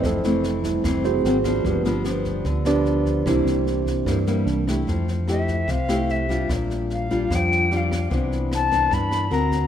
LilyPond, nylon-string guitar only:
\new Staff \with { instrumentName = "Nylon-string guitar" } { \time 4/4 \key c \mixolydian \tempo 4 = 149 << { <e a c'>8 <e a c'>4. <e a c'>4 <ges bes c'>8 <f b d'>8~ | <f b d'>8 <f b d'>8 <f b d'>4 r8 <f b d'>4. | <g bes e'>4. r8 <g bes e'>8 <g bes e'>4 <a e' g'>8~ | \key f \lydian <a e' g'>8 r8 <a e' g'>4 r8 <a e' g'>4 <g d' f'>8~ |
<g d' f'>4. <g d' f'>4. <g d' f'>4 | <e b d'>4. <e b d'>4. <c' fis' bes'>4 | } \\ { f,2 c4 r4 | g,2 d2 | c2 g,4 r4 | f2 c2 |
bes,2 f2 | c2 g,4 r4 | } >> }